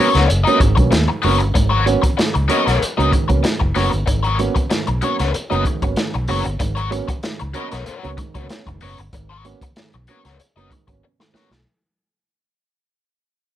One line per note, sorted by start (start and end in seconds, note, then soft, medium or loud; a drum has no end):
0.00 0.12 F#3 medium
0.00 0.12 A#3 medium
0.00 0.12 B3 medium
0.00 0.12 C#4 medium
0.12 0.27 C#2 medium
0.12 0.24 B3 soft
0.12 0.24 F#4 medium
0.12 0.24 A#4 medium
0.12 0.23 C#5 medium
0.12 snare soft
0.12 closed hi-hat medium
0.17 0.22 B3 soft
0.17 0.22 C#4 soft
0.28 0.44 F#1 medium
0.28 muted overdriven electric guitar stroke soft
0.28 closed hi-hat medium
0.44 0.58 F#3 medium
0.44 0.58 A#3 medium
0.44 0.58 B3 medium
0.44 0.59 B3 medium
0.44 0.59 C#4 medium
0.44 0.58 F#4 medium
0.44 0.58 A#4 medium
0.44 0.57 D#5 medium
0.44 closed hi-hat soft
0.59 0.75 G#1 medium
0.59 0.75 G#2 medium
0.59 0.75 D#3 medium
0.59 muted overdriven electric guitar stroke soft
0.59 kick medium
0.59 closed hi-hat medium
0.75 0.90 B1 medium
0.75 0.90 F#3 medium
0.75 0.90 A#3 medium
0.75 0.90 B3 medium
0.75 0.90 C#4 medium
0.75 muted overdriven electric guitar stroke soft
0.75 kick medium
0.75 closed hi-hat medium
0.91 1.06 D#2 medium
0.91 1.06 G#2 medium
0.91 1.06 D#3 medium
0.91 muted overdriven electric guitar stroke soft
0.91 snare loud
0.91 closed hi-hat medium
1.08 muted overdriven electric guitar stroke soft
1.22 1.42 F#1 loud
1.22 1.37 F#3 medium
1.22 1.37 A#3 medium
1.22 1.37 B3 medium
1.22 1.38 B3 medium
1.22 1.38 C#4 medium
1.22 1.37 F#4 medium
1.22 1.38 A#4 medium
1.22 1.38 C#5 medium
1.22 open hi-hat medium
1.39 1.53 G1 medium
1.39 1.48 B3 soft
1.39 1.48 C#4 soft
1.39 muted overdriven electric guitar stroke soft
1.39 closed hi-hat soft
1.54 1.95 G#1 loud
1.54 1.69 G#2 medium
1.54 1.69 D#3 medium
1.54 muted overdriven electric guitar stroke soft
1.54 kick medium
1.54 closed hi-hat medium
1.70 1.84 B3 medium
1.70 1.84 F#4 medium
1.70 1.84 A#4 medium
1.70 1.83 C#5 medium
1.85 2.00 F#3 medium
1.85 2.00 A#3 medium
1.85 2.00 B3 medium
1.85 2.00 C#4 loud
1.85 muted overdriven electric guitar stroke soft
1.85 closed hi-hat medium
2.02 2.10 B3 soft
2.02 2.10 C#4 soft
2.02 muted overdriven electric guitar stroke soft
2.02 kick loud
2.02 closed hi-hat medium
2.17 2.32 G#2 medium
2.17 2.32 D#3 medium
2.17 muted overdriven electric guitar stroke soft
2.17 snare medium
2.17 closed hi-hat medium
2.34 2.48 C#2 medium
2.34 muted overdriven electric guitar stroke soft
2.34 closed hi-hat soft
2.48 2.63 F#3 medium
2.48 2.63 A#3 medium
2.48 2.60 B3 medium
2.48 2.63 B3 medium
2.48 2.91 B3 medium
2.48 2.63 C#4 medium
2.48 2.60 F#4 medium
2.48 2.61 A#4 medium
2.48 2.91 A#4 loud
2.48 2.61 C#5 medium
2.48 2.91 D#5 loud
2.48 closed hi-hat medium
2.66 2.79 B1 medium
2.66 2.73 B3 soft
2.66 2.77 B3 soft
2.66 2.73 C#4 soft
2.66 2.77 F#4 medium
2.66 2.76 A#4 medium
2.66 2.76 C#5 medium
2.66 snare soft
2.66 closed hi-hat medium
2.81 muted overdriven electric guitar stroke soft
2.81 muted fingered electric bass stroke soft
2.81 closed hi-hat medium
2.97 3.11 C#2 medium
2.97 3.10 F#3 medium
2.97 3.10 A#3 medium
2.97 3.10 B3 medium
2.97 3.11 B3 medium
2.97 3.10 C#4 medium
2.97 3.11 F#4 medium
2.97 3.11 A#4 medium
2.97 3.10 D#5 medium
2.97 closed hi-hat soft
3.12 3.26 G#2 medium
3.12 3.26 D#3 medium
3.12 muted overdriven electric guitar stroke soft
3.12 kick medium
3.12 closed hi-hat medium
3.28 3.42 C#2 medium
3.28 3.41 F#3 medium
3.28 3.41 A#3 medium
3.28 3.41 B3 medium
3.28 3.41 C#4 medium
3.28 muted overdriven electric guitar stroke soft
3.28 kick medium
3.28 closed hi-hat soft
3.43 3.58 G#2 medium
3.43 3.58 D#3 medium
3.43 muted overdriven electric guitar stroke soft
3.43 snare loud
3.43 closed hi-hat medium
3.60 3.74 F#1 medium
3.60 muted overdriven electric guitar stroke soft
3.60 kick medium
3.75 3.90 F#1 medium
3.75 3.89 F#3 medium
3.75 3.89 A#3 medium
3.75 3.90 B3 medium
3.75 3.89 B3 medium
3.75 3.89 C#4 medium
3.75 3.90 F#4 medium
3.75 3.90 A#4 medium
3.75 3.89 C#5 loud
3.75 snare soft
3.75 open hi-hat medium
3.90 4.06 G1 loud
3.90 3.99 B3 soft
3.90 3.99 C#4 soft
3.90 muted overdriven electric guitar stroke soft
3.90 closed hi-hat soft
4.06 4.48 G#1 loud
4.06 4.21 G#2 medium
4.06 4.21 D#3 medium
4.06 muted overdriven electric guitar stroke soft
4.06 kick medium
4.06 closed hi-hat loud
4.23 4.37 B3 medium
4.23 4.37 F#4 medium
4.23 4.37 A#4 medium
4.23 4.36 C#5 medium
4.23 closed hi-hat soft
4.38 4.52 F#3 medium
4.38 4.52 A#3 medium
4.38 4.53 B3 medium
4.38 4.53 C#4 loud
4.38 muted overdriven electric guitar stroke soft
4.38 closed hi-hat medium
4.55 4.62 B3 soft
4.55 4.62 C#4 soft
4.55 muted overdriven electric guitar stroke soft
4.55 kick loud
4.55 closed hi-hat medium
4.70 4.84 G#2 medium
4.70 4.84 D#3 medium
4.70 muted overdriven electric guitar stroke soft
4.70 snare loud
4.70 closed hi-hat medium
4.87 5.00 B1 loud
4.87 muted overdriven electric guitar stroke soft
4.87 closed hi-hat soft
5.02 5.16 F#3 medium
5.02 5.16 A#3 medium
5.02 5.13 B3 medium
5.02 5.16 B3 medium
5.02 5.16 C#4 medium
5.02 5.13 F#4 medium
5.02 5.14 A#4 medium
5.02 5.14 C#5 medium
5.02 closed hi-hat medium
5.19 5.32 C#2 medium
5.19 5.26 B3 soft
5.19 5.30 B3 medium
5.19 5.26 C#4 soft
5.19 5.30 F#4 medium
5.19 5.29 A#4 medium
5.19 5.29 C#5 medium
5.19 snare soft
5.19 closed hi-hat medium
5.34 muted overdriven electric guitar stroke soft
5.34 closed hi-hat medium
5.50 5.64 F#1 medium
5.50 5.62 F#3 medium
5.50 5.62 A#3 medium
5.50 5.62 B3 medium
5.50 5.64 B3 medium
5.50 5.63 C#4 medium
5.50 5.64 F#4 medium
5.50 5.63 A#4 medium
5.50 5.63 D#5 medium
5.50 closed hi-hat soft
5.65 5.79 G#2 medium
5.65 5.79 D#3 medium
5.65 muted overdriven electric guitar stroke soft
5.65 kick loud
5.65 closed hi-hat medium
5.82 5.95 G#1 medium
5.82 5.94 F#3 medium
5.82 5.94 A#3 medium
5.82 5.94 B3 medium
5.82 5.94 C#4 medium
5.82 muted overdriven electric guitar stroke medium
5.82 kick medium
5.82 closed hi-hat soft
5.96 6.10 G#2 medium
5.96 6.10 D#3 medium
5.96 muted overdriven electric guitar stroke soft
5.96 snare loud
5.96 closed hi-hat loud
6.14 6.27 B1 medium
6.14 muted overdriven electric guitar stroke soft
6.14 closed hi-hat soft
6.28 6.43 F#1 loud
6.28 6.42 F#3 medium
6.28 6.42 A#3 medium
6.28 6.43 B3 medium
6.28 6.42 B3 medium
6.28 6.42 C#4 medium
6.28 6.43 F#4 medium
6.28 6.44 A#4 medium
6.28 6.43 C#5 medium
6.28 open hi-hat medium
6.45 6.58 G1 loud
6.45 6.51 B3 soft
6.45 6.51 C#4 soft
6.45 muted overdriven electric guitar stroke soft
6.45 closed hi-hat medium
6.60 7.00 G#1 loud
6.60 6.73 G#2 medium
6.60 6.74 D#3 medium
6.60 muted overdriven electric guitar stroke soft
6.60 kick medium
6.60 closed hi-hat loud
6.75 6.90 B3 medium
6.75 6.89 F#4 medium
6.75 6.89 A#4 medium
6.75 6.89 C#5 medium
6.75 closed hi-hat soft
6.91 7.05 F#3 loud
6.91 7.05 A#3 medium
6.91 7.05 B3 medium
6.91 7.05 C#4 loud
6.91 muted overdriven electric guitar stroke soft
6.91 closed hi-hat medium
7.08 7.14 B3 soft
7.08 7.14 C#4 soft
7.08 muted overdriven electric guitar stroke soft
7.08 kick loud
7.08 closed hi-hat medium
7.23 7.37 G#2 medium
7.23 7.37 D#3 medium
7.23 muted overdriven electric guitar stroke soft
7.23 snare loud
7.23 closed hi-hat medium
7.40 7.53 C#2 medium
7.40 muted overdriven electric guitar stroke medium
7.40 closed hi-hat soft
7.54 7.67 F#3 medium
7.54 7.68 A#3 medium
7.54 7.65 B3 medium
7.54 7.68 B3 medium
7.54 7.75 B3 loud
7.54 7.68 C#4 medium
7.54 7.66 F#4 medium
7.54 7.75 A#4 medium
7.54 7.66 A#4 medium
7.54 7.66 C#5 medium
7.54 7.75 D#5 loud
7.54 closed hi-hat medium
7.72 7.85 B1 medium
7.72 7.78 B3 soft
7.72 7.82 B3 soft
7.72 7.78 C#4 soft
7.72 7.82 F#4 medium
7.72 7.82 A#4 medium
7.72 7.81 C#5 medium
7.72 snare soft
7.72 closed hi-hat medium
7.86 8.07 B3 medium
7.86 8.07 F#4 medium
7.86 8.08 A#4 medium
7.86 8.08 C#5 medium
7.86 muted fingered electric bass stroke soft
7.86 closed hi-hat medium
8.03 8.16 C#2 medium
8.03 8.15 F#3 medium
8.03 8.15 A#3 medium
8.03 8.15 B3 medium
8.03 8.15 C#4 medium
8.03 closed hi-hat soft
8.17 8.31 G#2 medium
8.17 8.31 D#3 medium
8.17 muted overdriven electric guitar stroke soft
8.17 kick loud
8.17 closed hi-hat medium
8.35 8.47 C#2 medium
8.35 8.47 F#3 medium
8.35 8.47 A#3 medium
8.35 8.47 B3 medium
8.35 8.45 B3 soft
8.35 8.47 C#4 medium
8.35 8.45 F#4 medium
8.35 8.45 A#4 medium
8.35 8.44 C#5 medium
8.35 kick medium
8.35 closed hi-hat soft
8.50 8.63 B3 medium
8.50 8.63 C#4 medium
8.50 muted overdriven electric guitar stroke soft
8.50 snare loud
8.50 closed hi-hat medium
8.66 8.79 F#1 medium
8.66 8.79 G#2 medium
8.66 8.79 D#3 medium
8.66 muted overdriven electric guitar stroke soft
8.66 kick medium
8.66 closed hi-hat soft
8.81 8.96 F#1 loud
8.81 8.95 B3 medium
8.81 8.95 C#4 medium
8.81 8.96 F#4 medium
8.81 8.96 A#4 loud
8.81 8.96 C#5 loud
8.81 open hi-hat medium
8.98 9.11 G1 medium
8.98 muted overdriven electric guitar stroke soft
8.98 closed hi-hat medium
9.13 9.53 G#1 loud
9.13 9.26 G#2 medium
9.13 9.26 D#3 medium
9.13 muted overdriven electric guitar stroke soft
9.13 kick loud
9.13 closed hi-hat medium
9.30 9.44 B3 medium
9.30 9.44 F#4 medium
9.30 9.45 A#4 medium
9.30 9.46 C#5 medium
9.45 9.58 F#3 medium
9.45 9.58 A#3 medium
9.45 9.58 B3 medium
9.45 9.58 C#4 loud
9.45 muted overdriven electric guitar stroke soft
9.45 closed hi-hat medium
9.61 9.68 B3 soft
9.61 9.68 C#4 soft
9.61 muted overdriven electric guitar stroke medium
9.61 kick medium
9.61 closed hi-hat medium
9.76 9.90 G#2 medium
9.76 9.90 D#3 medium
9.76 muted overdriven electric guitar stroke soft
9.76 snare loud
9.76 closed hi-hat medium
9.93 10.06 B1 medium
9.93 muted overdriven electric guitar stroke soft
9.93 closed hi-hat soft
10.07 10.21 F#3 medium
10.07 10.21 A#3 medium
10.07 10.19 B3 medium
10.07 10.22 B3 medium
10.07 10.21 C#4 medium
10.07 10.19 F#4 medium
10.07 10.20 A#4 medium
10.07 10.20 C#5 medium
10.07 closed hi-hat medium
10.25 10.37 C#2 medium
10.25 10.31 B3 soft
10.25 10.35 B3 medium
10.25 10.31 C#4 soft
10.25 10.35 F#4 medium
10.25 10.35 A#4 medium
10.25 10.34 C#5 medium
10.25 snare soft
10.25 closed hi-hat medium
10.39 muted overdriven electric guitar stroke soft
10.39 muted fingered electric bass stroke soft
10.39 closed hi-hat medium
10.56 10.68 F#1 medium
10.56 10.68 F#3 medium
10.56 10.68 A#3 medium
10.56 10.68 B3 medium
10.56 10.69 B3 medium
10.56 10.69 C#4 medium
10.56 10.69 F#4 medium
10.56 10.69 A#4 medium
10.56 10.68 D#5 medium
10.56 closed hi-hat soft
10.71 10.84 G#2 medium
10.71 10.84 D#3 medium
10.71 muted overdriven electric guitar stroke soft
10.71 kick medium
10.71 closed hi-hat medium
10.88 11.00 G#1 medium
10.88 10.99 F#3 medium
10.88 10.99 A#3 medium
10.88 11.00 B3 medium
10.88 11.00 C#4 medium
10.88 muted overdriven electric guitar stroke soft
10.88 kick medium
10.88 closed hi-hat medium
11.03 11.09 B3 soft
11.03 11.09 C#4 soft
11.03 muted overdriven electric guitar stroke soft
11.19 11.31 G#2 medium
11.19 11.31 D#3 medium
11.19 muted overdriven electric guitar stroke soft
11.19 snare medium
11.33 11.47 F#3 medium
11.33 11.47 A#3 medium
11.33 11.47 B3 medium
11.33 11.48 B3 medium
11.33 11.47 C#4 medium
11.33 11.49 F#4 medium
11.33 11.49 A#4 medium
11.33 11.49 C#5 medium
11.33 muted fingered electric bass stroke soft
11.33 snare medium
11.51 11.63 B1 loud
11.51 muted overdriven electric guitar stroke medium
11.51 snare medium